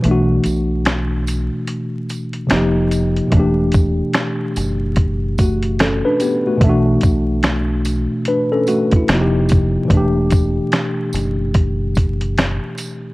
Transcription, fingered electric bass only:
X:1
M:4/4
L:1/16
Q:"Swing 16ths" 1/4=73
K:Edor
V:1 name="Fingered electric bass" clef=bass
B,,,2 B,,,4- B,,, z4 z =F,,,4 | E,,,4 z2 F,,,6- F,,, z3 | B,,,2 B,,,4- B,,, z4 z =F,,,4 | E,,,4 z2 F,,,6- F,,, z3 |]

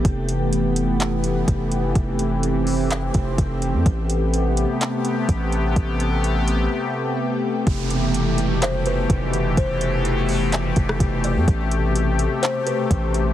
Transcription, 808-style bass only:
X:1
M:4/4
L:1/16
Q:1/4=126
K:Flyd
V:1 name="808-style bass" clef=bass
F,,,12 F,,,4 | F,,,8- F,,,2 F,,,2 F,,,3 F,, | A,,,6- A,,, z4 z A,,,4 | A,,,8 z8 |
F,,,12 F,,,4 | F,,,8- F,,,2 F,,,2 F,,,3 F,, | A,,,6- A,,, z4 z A,,,4 |]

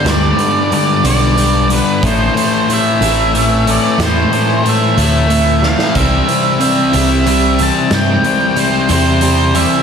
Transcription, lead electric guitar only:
X:1
M:6/8
L:1/8
Q:3/8=61
K:Am
V:1 name="Lead electric guitar"
d2 d d2 B | c2 e3 d | c2 e e2 f | e2 e e2 a |
g2 c c2 e |]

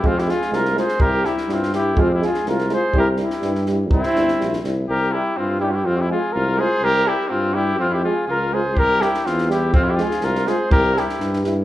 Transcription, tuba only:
X:1
M:2/4
L:1/8
Q:"Swing 16ths" 1/4=124
K:none
V:1 name="Tuba" clef=bass
F,,2 C,,2 | C,,2 G,,2 | F,,2 C,,2 | C,,2 G,,2 |
C,, G,,, _B,,, C,, | C,,2 G,,2 | F,,2 C,,2 | C,,2 G,,2 |
F,,2 _D,,2 | C,,2 E,,2 | F,,2 C,,2 | C,,2 G,,2 |]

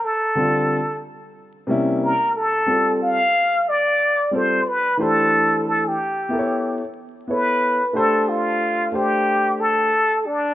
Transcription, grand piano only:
X:1
M:4/4
L:1/8
Q:"Swing 16ths" 1/4=91
K:Ddor
V:1 name="Grand piano"
z [D,G,CF] z3 [C,G,_B,_DE] z2 | [G,CFA] z4 [G,CFA] z [E,A,DGc]- | [E,A,DGc]2 z [B,EA_B^c] z2 [=B,EAc] z | [A,DGc]3 [A,DGc]3 z2 |]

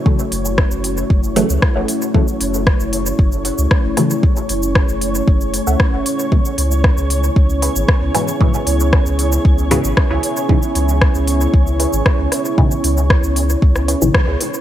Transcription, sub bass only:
X:1
M:4/4
L:1/16
Q:1/4=115
K:F#m
V:1 name="Sub bass" clef=bass
z2 F,,,2 z F,,,2 z F,,,2 z C,, z F,,, z2 | z2 F,,,2 z F,,,2 z F,,,2 z C,, z F,,, z2 | z2 F,,,2 z F,,,2 z F,,,2 z C,, z F,,, z2 | z2 C,,2 z C,,2 z C,,2 z G,,, z C,, z2 |
z2 C,,2 z C,,2 z C,,2 z G,,, z C,, z2 | z2 C,,2 z C,,2 z C,,2 z G,,, z C,, z2 | z2 C,,2 z C,,2 z C,,2 z G,,, z C,, z2 |]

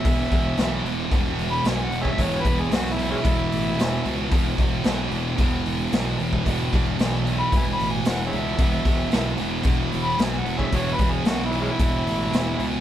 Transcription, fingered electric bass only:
X:1
M:4/4
L:1/8
Q:1/4=112
K:E
V:1 name="Fingered electric bass" clef=bass
E,,, E,,, B,,, E,,, E,,, E,,, B,,, E,,, | E,,, E,,, B,,,2 E,,, A,,, E,,, C,, | E,,, E,,, B,,, E,,, E,,, E,,, B,,, E,,, | E,,, E,,, B,,,2 E,,, A,,, E,,, C,, |
E,,, E,,, B,,, E,,, E,,, E,,, B,,, E,,, | E,,, E,,, B,,,2 E,,, A,,, E,,, C,, |]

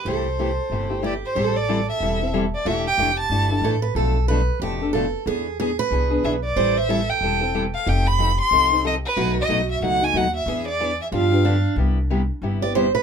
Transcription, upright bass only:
X:1
M:4/4
L:1/8
Q:"Swing" 1/4=184
K:C
V:1 name="Upright bass" clef=bass
C,,4 G,,,4 | [K:Am] A,,,4 E,,,4 | E,,,2 F,,,2 G,,,2 A,,,2 | B,,,4 F,,,4 |
E,,4 C,,2 B,,,2 | A,,,4 E,,,4 | F,,,4 C,,4 | B,,,2 B,,,2 ^C,,2 ^D,,2 |
E,,4 G,,4 | [K:C] C,,4 G,,,4 |]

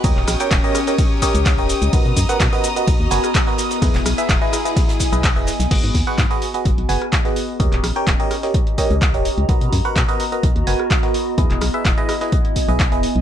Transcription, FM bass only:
X:1
M:4/4
L:1/16
Q:1/4=127
K:G#m
V:1 name="FM bass" clef=bass
D,, D,,, A,,, z D,,, z6 C,,2 D,,, z C,, | B,,, B,, F,, z B,, z3 B,,, D,, F,,, z4 z | E,, E,,, B,,, z E,,, z6 B,,,2 E,,, z B,,, | G,,, G,, D,, z G,, z3 G,,, B,,, F,,, z4 z |
D,, D,,, A,,, z D,,, z6 C,,2 D,,, z C,, | B,,, B,, F,, z B,, z3 B,,, D,, F,,, z4 z | E,, E,,, B,,, z E,,, z6 B,,,2 E,,, z B,,, |]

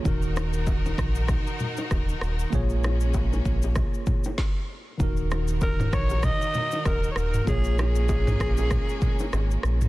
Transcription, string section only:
X:1
M:4/4
L:1/8
Q:"Swing 16ths" 1/4=97
K:Ebm
V:1 name="String section"
[E,EGB]8 | [A,B,D]6 z2 | [E,EGB]8 | [A,B,D]8 |]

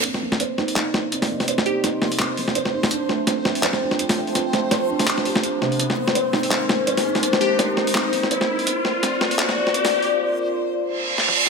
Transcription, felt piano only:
X:1
M:4/4
L:1/8
Q:"Swing 16ths" 1/4=167
K:Cm
V:1 name="Felt piano"
C B, c E E B, C B, | c E E B, C B, c E | D =A, C A, c D D A, | C =A, c D z G D C, |
C B, c E C B, c E | C B, c E C B, c E | C B, C B, C B, C B, | z8 |]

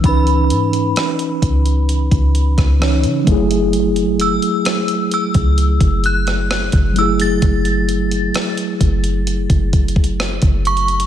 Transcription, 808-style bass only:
X:1
M:4/4
L:1/16
Q:1/4=65
K:F#dor
V:1 name="808-style bass" clef=bass
C,,2 G,,2 z2 C,,3 C,,2 C,,2 C, F,,,2- | F,,,3 z4 C,,2 F,,,4 F,,,3 | F,,,4 z2 F,,,3 F,,,4 F,,,3 |]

